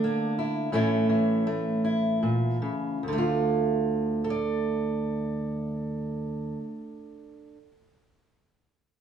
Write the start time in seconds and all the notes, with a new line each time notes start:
Already playing: D3 A3 D4
0.04 A#3
0.39 E4
0.72 A2 E3 A3 C#4 E4
1.09 E3
1.47 A3
1.85 E4
2.23 A#2
2.62 C#3
3.03 D2
3.08 D3
3.13 A3
3.18 F4
4.24 A4
4.30 D5